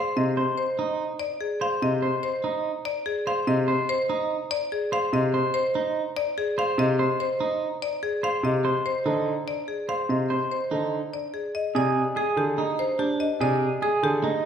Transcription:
Already playing: clean electric guitar C5, marimba F5
0.17 grand piano C3, marimba D#5
0.37 clean electric guitar C5
0.58 marimba C5
0.79 clean electric guitar D#4
1.20 marimba D5
1.41 marimba G#4
1.61 clean electric guitar C5, marimba F5
1.82 grand piano C3, marimba D#5
2.02 clean electric guitar C5
2.23 marimba C5
2.44 clean electric guitar D#4
2.85 marimba D5
3.06 marimba G#4
3.27 clean electric guitar C5, marimba F5
3.47 grand piano C3, marimba D#5
3.68 clean electric guitar C5
3.89 marimba C5
4.10 clean electric guitar D#4
4.51 marimba D5
4.72 marimba G#4
4.92 clean electric guitar C5, marimba F5
5.13 grand piano C3, marimba D#5
5.34 clean electric guitar C5
5.54 marimba C5
5.75 clean electric guitar D#4
6.17 marimba D5
6.38 marimba G#4
6.58 clean electric guitar C5, marimba F5
6.78 grand piano C3, marimba D#5
6.99 clean electric guitar C5
7.20 marimba C5
7.40 clean electric guitar D#4
7.82 marimba D5
8.03 marimba G#4
8.23 clean electric guitar C5, marimba F5
8.43 grand piano C3, marimba D#5
8.65 clean electric guitar C5
8.86 marimba C5
9.05 grand piano D3, clean electric guitar D#4
9.48 marimba D5
9.68 marimba G#4
9.89 clean electric guitar C5, marimba F5
10.09 grand piano C3, marimba D#5
10.30 clean electric guitar C5
10.52 marimba C5
10.71 grand piano D3, clean electric guitar D#4
11.14 marimba D5
11.34 marimba G#4
11.55 marimba D#5
11.75 grand piano C3, clean electric guitar G#4, marimba D5
12.16 clean electric guitar G#4, marimba G#4
12.37 grand piano D3, marimba G4
12.58 clean electric guitar D#4
12.79 marimba C5
12.99 clean electric guitar D4, marimba G4
13.20 marimba D#5
13.40 grand piano C3, clean electric guitar G#4, marimba D5
13.82 clean electric guitar G#4, marimba G#4
14.03 grand piano D3, marimba G4
14.24 clean electric guitar D#4

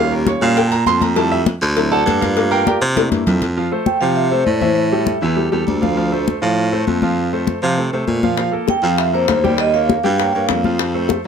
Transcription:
Already playing: baritone saxophone D#2, grand piano G3 C#4 F4 F5
0.12 grand piano A#4, high conga
0.27 grand piano C#5, cowbell, high conga
0.41 baritone saxophone A#2, grand piano G3 C#4 F4 F5, high conga
0.56 grand piano G5, cowbell, high conga
0.68 grand piano A5
0.72 grand piano A#5, cowbell, high conga
0.86 baritone saxophone F2, grand piano C6, cowbell, high conga
0.97 grand piano A5
1.01 grand piano A#5, cowbell, high conga
1.16 grand piano G3 A3 E4 A5, cowbell, high conga
1.32 grand piano E5, high conga
1.46 cowbell, high conga
1.61 baritone saxophone D2, cowbell, high conga
1.76 grand piano F#3 C4 E4, cowbell, high conga
1.92 grand piano A4 D5 F#5 A5, high conga
2.06 baritone saxophone G2, cowbell, high conga
2.21 grand piano F4 A#4 D5 F5, cowbell, high conga
2.36 grand piano A3 A#3 F4, cowbell, high conga
2.51 grand piano A#4 F5 G5 A#5, high conga
2.67 grand piano G4 A#4 D5 G5, cowbell, high conga
2.81 baritone saxophone C3, high conga
2.95 grand piano A3 A#3 D4 E4, cowbell, high conga
3.11 baritone saxophone G2, cowbell, high conga
3.26 baritone saxophone F2, cowbell, low conga
3.42 cowbell, low conga
3.57 grand piano F3 F4 F5, high conga
3.72 grand piano A3 A4 C5, high conga
3.86 vibraphone G5, high conga
4.01 baritone saxophone C3, grand piano F3 F4 F5, vibraphone F5, high conga
4.16 vibraphone E5, high conga
4.30 grand piano A3 A4 C5, vibraphone C5, high conga
4.44 baritone saxophone A2, vibraphone D5, high conga
4.60 grand piano E3 E4 E5, vibraphone C5, high conga
4.75 vibraphone E5, high conga
4.91 grand piano G3 G4 A4, high conga
5.07 high conga
5.21 baritone saxophone E2, grand piano E3 E4 E5, high conga
5.37 grand piano G3 G4 A4, high conga
5.52 baritone saxophone E2, grand piano G3 G4 A4, high conga
5.67 baritone saxophone D2, high conga
5.81 grand piano F3 F4 F5, high conga
5.97 grand piano F3 F4 F5, high conga
6.12 grand piano A3 A4 C5, high conga
6.28 high conga
6.42 baritone saxophone A2, grand piano F3 F4 F5, high conga
6.58 high conga
6.72 grand piano A3 A4 C5, high conga
6.87 baritone saxophone F2, high conga
7.02 grand piano F3 F4 F5, high conga
7.18 high conga
7.33 grand piano A3 A4 C5, high conga
7.47 high conga
7.62 baritone saxophone C3, grand piano F3 F4 F5, high conga
7.77 grand piano A3 A4 C5, high conga
7.92 baritone saxophone C3, grand piano A3 A4 C5, high conga
8.07 baritone saxophone A#2, high conga
8.23 grand piano F3 F4 F5, high conga
8.38 grand piano F3 F4 F5, high bongo, high conga
8.52 grand piano A#3 A4 A#4, high conga
8.68 vibraphone G5, high bongo, high conga
8.83 baritone saxophone F2, grand piano F3 F4 F5, vibraphone F5, high conga
8.98 vibraphone E5, high bongo, high conga
9.13 grand piano A#3 A4 A#4, vibraphone C5, high conga
9.28 baritone saxophone D#2, high bongo, low bongo, high conga
9.44 grand piano G3 G4 G5, vibraphone D5, high conga
9.58 vibraphone D#5, high bongo, high conga
9.74 grand piano A#3 A#4 C#5, vibraphone F5, high bongo, high conga
9.89 high bongo, high conga
10.04 baritone saxophone G2, grand piano G3 G4 G5, high bongo, high conga
10.18 grand piano A#3 A#4 C#5, vibraphone G5, high bongo, high conga
10.33 baritone saxophone G2, grand piano A#3 A#4 C#5, vibraphone F5, high conga
10.49 baritone saxophone F2, high bongo, low bongo, high conga
10.64 grand piano F3 F4 F5, high bongo, high conga
10.79 grand piano F3 F4 F5, high bongo, high conga
10.94 grand piano A3 A4 C5, high conga
11.09 high bongo, high conga

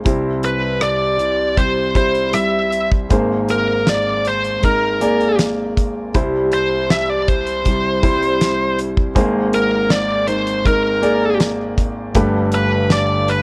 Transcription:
0.05 grand piano C2 C3 G3 C4 E4, nylon-string guitar C3 G3 C4 E4 G4, kick, closed hi-hat
0.43 lead electric guitar B4, closed hi-hat
0.81 lead electric guitar D5, cross-stick, closed hi-hat
1.18 nylon-string guitar C4 E4 G4, closed hi-hat
1.56 nylon-string guitar C3 G3 C4 E4 G4, lead electric guitar C5, kick, closed hi-hat
1.95 grand piano G3 E4 C5, lead electric guitar C5, kick, closed hi-hat
2.15 closed hi-hat
2.33 nylon-string guitar G3 C4 E4 G4, lead electric guitar E5, cross-stick, closed hi-hat
2.72 closed hi-hat
2.92 kick
3.09 grand piano G#1 G#2 A#3 G#4 C5, nylon-string guitar G#3 C4 D#4, kick, closed hi-hat
3.14 nylon-string guitar A#4
3.49 lead electric guitar A#4, closed hi-hat
3.87 lead electric guitar D5, snare, closed hi-hat
4.25 lead electric guitar C5, closed hi-hat
4.44 closed hi-hat
4.62 nylon-string guitar G#3 C4 D#4, lead electric guitar A#4, kick, closed hi-hat
4.66 nylon-string guitar A#4
5.01 grand piano A#3 G#4 D5, closed hi-hat
5.21 closed hi-hat
5.39 snare, closed hi-hat
5.77 kick, closed hi-hat
6.14 grand piano C2 C3 G3 E4 C5, nylon-string guitar C3 G3 C4 E4, kick, closed hi-hat
6.18 nylon-string guitar G4
6.52 lead electric guitar C5, closed hi-hat
6.90 lead electric guitar E5, snare, closed hi-hat
7.10 lead electric guitar D5
7.28 lead electric guitar C5, kick, closed hi-hat
7.47 closed hi-hat
7.64 nylon-string guitar C3 G3 C4 E4, kick, closed hi-hat
7.69 nylon-string guitar G4
8.03 grand piano G3 E4 C5, kick, closed hi-hat
8.22 closed hi-hat
8.41 snare, closed hi-hat
8.79 closed hi-hat
8.97 kick
9.15 grand piano G#1 G#2 A#3 G#4 C5, nylon-string guitar G#3 C4 D#4 A#4, kick, closed hi-hat
9.53 lead electric guitar A#4, closed hi-hat
9.90 lead electric guitar D5, snare, closed hi-hat
10.27 nylon-string guitar C4 D#4 A#4, lead electric guitar C5, closed hi-hat
10.47 closed hi-hat
10.64 nylon-string guitar G#3 C4 D#4, lead electric guitar A#4, kick, closed hi-hat
10.69 nylon-string guitar A#4
11.02 grand piano A#3 G#4 D5, closed hi-hat
11.40 snare, closed hi-hat
11.78 kick, closed hi-hat
12.14 grand piano G1 G2 A3 G4 B4, nylon-string guitar G2 D3 A3 B3 D4, kick, closed hi-hat
12.19 nylon-string guitar A4
12.52 lead electric guitar B4, closed hi-hat
12.90 lead electric guitar D5, snare, closed hi-hat
13.28 lead electric guitar B4, closed hi-hat

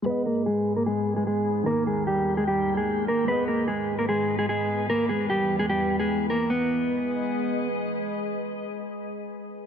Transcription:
0.02 ambient pad G#2 D#3 B3 G#4, grand piano G#3 G#4, clean electric guitar B4
0.07 clean electric guitar B3, grand piano B4 D#5
0.26 clean electric guitar A#3 A#4
0.46 clean electric guitar G#3 G#4
0.76 clean electric guitar A#3 A#4
0.86 clean electric guitar G#3 G#4
1.16 clean electric guitar G#3 G#4
1.27 clean electric guitar G#3 G#4
1.63 ambient pad D#2 A#3 G5, grand piano D#3 D#4, clean electric guitar A#3 A#4
1.70 grand piano A#4
1.87 clean electric guitar G#3 G#4
2.07 clean electric guitar G3 G4
2.37 clean electric guitar G#3 G#4
2.48 clean electric guitar G3 G4
2.77 clean electric guitar G#3 G#4
3.08 clean electric guitar A#3 A#4
3.24 ambient pad G#2 B3 B4, grand piano G#3 G#4, clean electric guitar B4
3.29 clean electric guitar B3, grand piano B4 D#5
3.48 clean electric guitar A#3 A#4
3.68 clean electric guitar G#3 G#4
3.99 clean electric guitar A#3 A#4
4.09 clean electric guitar G#3 G#4
4.39 clean electric guitar G#3 G#4
4.49 clean electric guitar G#3 G#4
4.89 ambient pad E2 E3, clean electric guitar A#3 A#4
5.09 clean electric guitar G#3 G#4
5.30 clean electric guitar G3 G4
5.59 clean electric guitar G#3 G#4
5.69 clean electric guitar G3 G4
6.00 clean electric guitar G#3 G#4
6.30 clean electric guitar A#3 A#4
6.50 ambient pad G#3 G#4 B4 D#5, clean electric guitar B3

